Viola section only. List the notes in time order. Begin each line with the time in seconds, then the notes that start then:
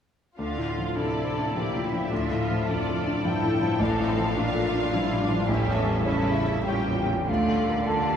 0.38 D4
0.68 F4
0.97 E4
2.10 D4
2.39 F4
2.67 F4
3.24 E4
3.79 D4
4.08 C4
4.36 D4
4.92 E4
5.21 D4
5.49 C#4
6.06 E4
6.66 C#4
7.28 A3
7.87 A3